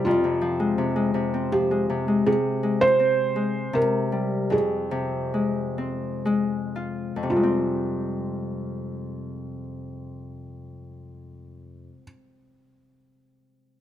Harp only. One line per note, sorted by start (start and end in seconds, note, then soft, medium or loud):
0.00 0.10 C3 medium
0.00 0.10 G3 soft
0.00 0.44 A#3 soft
0.00 0.12 E4 soft
0.06 2.31 F2 medium
0.24 0.77 C3 soft
0.41 0.82 F3 soft
0.60 0.95 G#3 soft
0.78 1.13 C3 soft
0.96 1.70 G#3 medium
1.14 1.88 C3 medium
1.34 2.99 C4 soft
1.52 1.94 F3 soft
1.71 2.07 G#3 soft
1.90 2.25 C3 soft
2.08 2.31 G#3 soft
2.26 3.72 C3 medium
2.63 3.35 G#3 soft
3.00 5.78 C4 soft
3.36 3.78 G#3 soft
3.73 4.55 C3 medium
4.12 4.55 G3 soft
4.50 7.15 F2 soft
4.91 7.22 C3 soft
5.34 6.24 G#3 soft
5.78 7.43 C4 soft
6.25 7.34 G#3 soft
6.76 9.28 F4 soft
7.16 11.88 F2 soft
7.23 11.94 C3 soft
7.30 12.01 G3 soft
7.36 12.08 G#3 soft
7.43 12.15 C4 soft